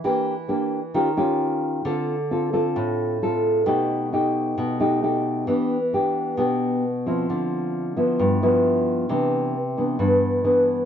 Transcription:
\new Staff \with { instrumentName = "Nylon-string guitar" } { \time 4/4 \key d \dorian \tempo 4 = 133 << { <bes d' g'>8 r8 <bes d' g'>8 r8 <cis' eis' g'>8 <cis' eis' g'>4. | <c' f' a'>8 r8 <c' f' a'>8 <c' f' a'>4. <c' f' a'>4 | <a dis' g'>4 <a dis' g'>4. <a dis' g'>8 <a dis' g'>4 | <b d' g'>8 r8 <b d' g'>4 <b d' g'>4 r8 <f c' e'>8~ |
<f c' e'>4. <f b e'>4 <f b e'>4. | <e b d'>4 r8 <e b d'>8 <e b d'>4 <e b d'>4 | } \\ { e2 dis2 | d2 a,2 | b,2 b,2 | e2 b,2 |
d2 g,2 | c2 g,2 | } >> }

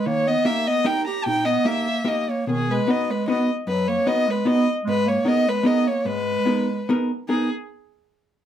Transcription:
<<
  \new Staff \with { instrumentName = "Violin" } { \time 3/4 \key gis \minor \tempo 4 = 150 cis''8 dis''8 e''8 dis''8 g''8 ais''8 | g''8 dis''8 e''4 dis''8 cis''8 | gis'8 b'8 dis''8 b'8 dis''8 r8 | b'8 cis''8 dis''8 b'8 dis''8 r8 |
b'8 cis''8 dis''8 b'8 dis''8 cis''8 | b'2 r4 | gis'8 r2 r8 | }
  \new Staff \with { instrumentName = "Hollow-body jazz guitar" } { \time 3/4 \key gis \minor dis4 <ais dis' g' ais'>8 r8 <ais dis' g' ais'>8 r8 | ais,4 <ais dis' g' ais'>8 r8 <ais dis' g' ais'>8 r8 | b,4 <b dis' fis' b'>8 r8 <b dis' fis' b'>8 r8 | fis,4 <b dis' fis' b'>8 r8 <b dis' fis' b'>8 r8 |
gis,4 <b dis' gis' ais'>8 r8 <b dis' gis' ais'>8 r8 | gis,4 <b dis' gis' ais'>8 r8 <b dis' gis' ais'>8 r8 | <b dis' gis' ais'>8 r2 r8 | }
  \new Staff \with { instrumentName = "Clarinet" } { \time 3/4 \key gis \minor ais8 b8 ais8 b8 dis'8 g'8 | dis'8 b8 ais4 ais8 ais8 | dis8 gis8 b8 gis8 b8 r8 | fis8 ais8 b8 gis8 b8 r8 |
gis8 ais8 b8 gis8 b8 ais8 | gis2 r4 | dis'8 r2 r8 | }
>>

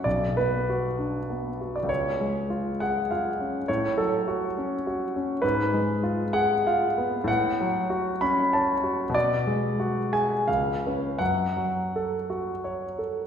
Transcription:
\new Staff \with { instrumentName = "Grand piano" } { \time 3/4 \key fis \minor \tempo 4 = 97 << { d''8 b'2~ b'16 d''16 | cis''4. fis''8 eis''4 | cis''8 a'2~ a'8 | ces''4. fis''8 f''4 |
fis''4. b''8 a''4 | d''4. gis''8 eis''4 | fis''2~ fis''8 r8 | } \\ { b,,8 b8 fis'8 d'8 b8 fis'8 | cis,8 gis8 eis'8 gis'8 eis'8 cis'8 | a,8 fis8 fis'8 cis'8 fis'8 cis'8 | aes,8 aes8 f'8 aes'8 f'8 ces'8 |
a,8 fis8 fis'8 cis'8 cis''8 fis'8 | b,8 gis8 fis'8 gis'8 cis,8 <cis' b'>8 | fis,8 fis8 a'8 fis'8 cis''8 a'8 | } >> }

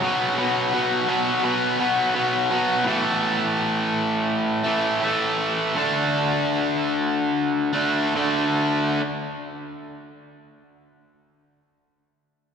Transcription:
\new Staff \with { instrumentName = "Distorted electric guitar" } { \clef bass \time 4/4 \key d \lydian \tempo 4 = 79 <b, fis b>8 <b, fis b>8 <b, fis b>8 <b, fis b>8 <b, fis b>8 <b, fis b>8 <b, fis b>8 <b, fis b>8 | <a, e a>2~ <a, e a>8 <a, e a>8 <a, e a>4 | <d a d'>2~ <d a d'>8 <d a d'>8 <d a d'>4 | r1 | }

